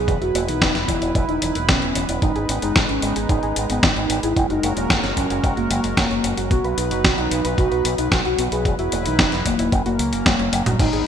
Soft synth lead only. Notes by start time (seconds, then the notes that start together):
Already playing: G#4
0.22 F#4
0.48 D#4
0.88 E4
1.28 D#4
1.69 C#4
2.22 D#4
2.62 D#4
2.89 C#4
3.29 D#4
3.70 B3
3.96 D#4
4.23 E4
4.50 D#4
4.77 A#3
5.17 C#4
5.57 A#3
5.97 A#3
6.51 F#4
6.91 F#4
7.18 D#4
7.58 F#4
7.98 D#4
8.25 F#4
8.52 G#4
8.79 F#4
9.06 D#4
9.46 A#3
9.86 A#3
10.26 A#3
10.80 D#4